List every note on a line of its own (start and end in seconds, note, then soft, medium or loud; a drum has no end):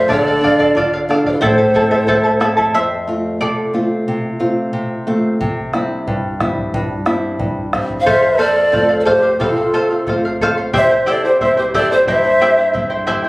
0.00 0.11 C5 soft
0.00 0.11 C5 medium
0.08 1.37 D3 medium
0.08 0.26 A4 medium
0.08 0.26 D5 medium
0.08 0.95 D5 loud
0.08 0.26 F5 medium
0.08 bombo low medium
0.13 0.96 A4 medium
0.27 0.43 D5 soft
0.27 0.43 F5 medium
0.41 0.74 D4 medium
0.41 0.59 A4 medium
0.41 0.59 D5 medium
0.41 0.58 F5 medium
0.45 bombo low medium
0.59 0.75 A4 medium
0.59 0.75 D5 medium
0.59 0.76 F5 medium
0.59 bombo low soft
0.75 1.08 F4 medium
0.75 0.93 A4 medium
0.75 0.93 D5 medium
0.75 0.92 F5 medium
0.75 bombo low medium
0.93 1.09 D5 soft
0.93 1.10 F5 medium
1.09 1.41 D4 medium
1.09 1.26 A4 medium
1.09 1.26 D5 medium
1.09 1.25 F5 medium
1.09 bombo rim medium
1.26 1.34 C5 medium
1.26 1.42 D5 soft
1.26 1.41 F5 medium
1.26 bombo low soft
1.30 1.43 E4 soft
1.30 1.35 G4 medium
1.30 1.43 A4 medium
1.41 2.70 A2 medium
1.41 1.58 E4 medium
1.41 2.42 A4 medium
1.41 1.57 A4 medium
1.41 1.58 C5 medium
1.41 2.43 C5 medium
1.41 1.58 E5 medium
1.41 1.57 A5 medium
1.41 bombo low medium
1.58 1.74 E4 soft
1.58 1.74 A4 medium
1.58 1.75 A5 soft
1.74 2.07 C4 medium
1.74 1.90 E4 medium
1.74 1.90 A4 medium
1.74 1.91 E5 medium
1.74 1.90 A5 medium
1.74 bombo low medium
1.91 2.07 E4 medium
1.91 2.07 A4 medium
1.91 2.07 C5 medium
1.91 2.07 E5 medium
1.91 2.08 A5 medium
1.91 bombo low medium
2.07 2.24 E4 medium
2.07 2.40 A4 medium
2.07 2.23 A4 medium
2.07 2.25 C5 medium
2.07 2.25 E5 medium
2.07 2.22 A5 medium
2.07 bombo low medium
2.24 2.39 E4 soft
2.24 2.40 A4 medium
2.24 2.41 A5 soft
2.40 2.73 C4 medium
2.40 2.57 E4 medium
2.40 2.56 A4 medium
2.40 2.58 E5 medium
2.40 2.56 A5 medium
2.40 bombo rim medium
2.57 2.75 E4 soft
2.57 2.75 A4 soft
2.57 2.74 A5 medium
2.57 bombo low medium
2.74 3.39 F2 medium
2.74 3.37 C5 medium
2.74 3.43 E5 medium
3.07 3.61 A3 soft
3.07 3.61 C4 soft
3.07 3.62 F4 soft
3.41 4.05 C3 soft
3.41 5.04 A4 medium
3.41 5.03 D5 medium
3.74 4.27 A3 soft
3.74 4.27 C4 soft
3.74 4.28 F4 soft
4.08 4.72 C3 medium
4.40 4.93 A3 soft
4.40 4.94 C4 soft
4.40 4.94 F4 soft
4.73 5.38 C3 medium
5.07 5.34 A3 soft
5.07 5.34 C4 soft
5.07 5.34 F4 soft
5.41 6.05 C3 medium
5.41 bombo low medium
5.73 6.27 G3 soft
5.73 6.27 C4 soft
5.73 6.27 E4 soft
5.73 bombo rim soft
6.07 6.72 G2 medium
6.07 bombo low soft
6.40 6.94 G3 soft
6.40 6.94 C4 soft
6.40 6.94 E4 soft
6.40 bombo rim soft
6.40 bombo low soft
6.58 bombo low soft
6.73 7.38 G2 medium
6.73 bombo low medium
7.06 7.60 G3 soft
7.06 7.60 C4 soft
7.06 7.60 E4 soft
7.06 bombo rim soft
7.39 8.05 G2 medium
7.39 bombo low medium
7.73 8.00 G3 soft
7.73 8.01 C4 soft
7.73 8.01 E4 soft
7.73 bombo rim medium
7.73 bombo low soft
7.90 bombo low soft
8.00 8.07 C5 medium
8.00 8.09 F5 medium
8.06 9.36 F2 medium
8.06 8.23 A4 medium
8.06 8.22 C5 medium
8.06 8.42 C5 loud
8.06 8.41 E5 loud
8.06 8.21 F5 medium
8.06 bombo low medium
8.22 8.38 C5 soft
8.22 8.38 F5 medium
8.38 8.56 A4 medium
8.38 9.00 A4 medium
8.38 8.55 C5 medium
8.38 9.00 D5 loud
8.38 8.54 F5 medium
8.55 8.72 C5 soft
8.55 8.73 F5 soft
8.72 9.38 A3 soft
8.72 9.38 C4 soft
8.72 9.38 F4 medium
8.72 8.90 A4 soft
8.72 8.88 C5 medium
8.72 8.88 F5 medium
8.72 bombo low medium
8.89 9.05 C5 soft
8.89 9.05 F5 medium
9.00 9.08 A4 medium
9.00 9.06 D5 medium
9.05 9.11 G#4 medium
9.05 9.23 A4 medium
9.05 9.41 C5 medium
9.05 9.22 C5 medium
9.05 9.21 F5 medium
9.05 bombo low medium
9.10 9.42 G4 medium
9.22 9.39 C5 soft
9.22 9.40 F5 medium
9.39 10.70 C3 medium
9.39 9.54 E4 medium
9.39 10.40 A4 medium
9.39 9.57 A4 medium
9.39 9.56 C5 medium
9.39 9.55 F5 medium
9.39 bombo low medium
9.54 10.41 F4 medium
9.54 9.73 C5 soft
9.54 9.74 F5 medium
9.74 9.90 A4 medium
9.74 9.90 C5 medium
9.74 9.89 F5 medium
9.90 10.08 C5 soft
9.90 10.07 F5 soft
10.07 10.72 A3 soft
10.07 10.72 C4 soft
10.07 10.72 F4 medium
10.07 10.24 A4 medium
10.07 10.25 C5 medium
10.07 10.24 F5 medium
10.07 bombo low medium
10.25 10.41 C5 soft
10.25 10.41 F5 medium
10.40 10.58 A4 medium
10.40 10.57 C5 medium
10.40 10.56 F5 loud
10.40 bombo low medium
10.58 10.72 C5 soft
10.58 10.73 F5 medium
10.73 12.03 C3 medium
10.73 10.91 E4 medium
10.73 10.90 G4 medium
10.73 10.91 C5 medium
10.73 10.82 D5 medium
10.73 10.90 E5 medium
10.73 11.06 E5 loud
10.73 10.90 G5 medium
10.73 bombo low medium
10.80 11.06 C5 medium
10.91 11.05 E4 soft
10.91 11.06 C5 soft
10.91 11.07 G5 medium
11.06 11.24 E4 medium
11.06 11.23 G4 medium
11.06 11.24 C5 medium
11.06 11.26 D5 medium
11.06 11.24 E5 medium
11.06 11.23 G5 medium
11.10 11.27 A4 medium
11.25 11.40 E4 soft
11.25 11.40 G4 medium
11.25 11.40 C5 medium
11.25 11.40 C5 soft
11.25 11.41 G5 soft
11.40 12.06 G3 soft
11.40 12.06 C4 soft
11.40 11.57 E4 medium
11.40 12.06 E4 soft
11.40 11.56 C5 medium
11.40 11.56 E5 medium
11.40 11.58 E5 medium
11.40 11.56 G5 medium
11.40 bombo low medium
11.57 11.73 E4 soft
11.57 11.64 G4 medium
11.57 11.74 C5 soft
11.57 11.64 C5 medium
11.57 11.74 G5 medium
11.74 11.91 E4 medium
11.74 11.91 G4 medium
11.74 11.94 A4 medium
11.74 11.90 C5 medium
11.74 11.93 D5 medium
11.74 11.91 E5 medium
11.74 11.90 G5 medium
11.74 bombo low medium
11.91 12.07 E4 soft
11.91 12.08 G4 medium
11.91 12.07 C5 soft
11.91 12.07 C5 medium
11.91 12.07 G5 soft
12.07 13.29 G2 medium
12.07 12.24 E4 medium
12.07 12.24 G4 medium
12.07 12.24 C5 medium
12.07 13.04 C5 medium
12.07 13.04 E5 loud
12.07 12.24 E5 medium
12.07 12.23 G5 medium
12.07 bombo low medium
12.24 12.41 E4 soft
12.24 12.41 C5 soft
12.24 12.41 G5 soft
12.41 12.58 E4 medium
12.41 12.58 G4 medium
12.41 12.57 C5 medium
12.41 12.58 E5 medium
12.41 12.56 G5 medium
12.57 12.73 E4 soft
12.57 12.73 C5 soft
12.57 12.73 G5 soft
12.73 13.29 G3 soft
12.73 13.29 C4 soft
12.73 12.90 E4 medium
12.73 13.29 E4 medium
12.73 12.89 C5 soft
12.73 12.91 E5 medium
12.73 12.89 G5 medium
12.73 bombo low medium
12.90 13.06 E4 soft
12.90 13.06 C5 medium
12.90 13.06 G5 medium
13.07 13.24 E4 medium
13.07 13.24 G4 medium
13.07 13.24 C5 loud
13.07 13.24 E5 medium
13.07 13.23 G5 medium
13.07 bombo low medium
13.24 13.29 E4 soft
13.24 13.29 C5 soft
13.24 13.29 G5 soft